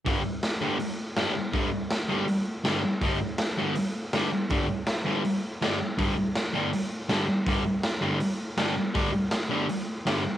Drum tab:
HH |o-o-o-o-|o-o-o-o-|o-o-o-o-|o-o-o-o-|
SD |--o---o-|--o---o-|--o---o-|--o---o-|
BD |o-------|o-------|o-------|o-------|

HH |o-o-o-o-|o-o-o-o-|o-o-o-o-|
SD |--o---o-|--o---o-|--o---o-|
BD |o-------|o-------|o-------|